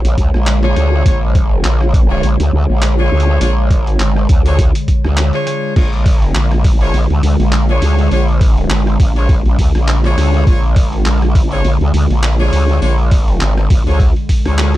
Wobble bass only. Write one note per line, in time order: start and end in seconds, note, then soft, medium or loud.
0.05 0.16 A#1 medium
0.18 0.31 D2 loud
0.35 0.75 A#1 loud
0.76 1.04 D2 medium
1.06 1.63 A#1 loud
1.65 2.21 A#1 loud
2.24 2.37 A#1 loud
2.40 2.51 D2 medium
2.53 2.67 D2 loud
2.70 3.10 A#1 loud
3.12 3.39 D2 medium
3.41 3.81 A#1 medium
3.81 3.98 A1 medium
4.00 4.27 G#1 loud
4.29 4.73 D2 medium
5.05 5.32 D2 loud
5.76 6.33 A#1 loud
6.35 6.92 A#1 loud
6.94 7.08 A#1 medium
7.10 7.21 D2 medium
7.23 7.37 D2 loud
7.39 7.80 A#1 loud
7.82 8.10 D2 medium
8.12 8.69 A#1 medium
8.70 8.98 G#1 loud
9.00 9.43 A#1 loud
9.46 9.57 A#1 loud
9.59 9.73 D2 loud
9.76 10.16 A#1 loud
10.17 10.45 D2 medium
10.47 10.87 A#1 medium
10.87 11.04 A1 medium
11.06 11.46 A#1 medium
11.46 11.62 A1 medium
11.65 11.79 A#1 medium
11.81 11.92 D2 medium
11.94 12.08 D2 loud
12.10 12.51 A#1 loud
12.53 12.80 D2 medium
12.82 13.39 A#1 medium
13.41 13.69 G#1 loud
13.70 13.84 A#1 medium
13.87 14.14 D2 loud
14.46 14.77 D2 loud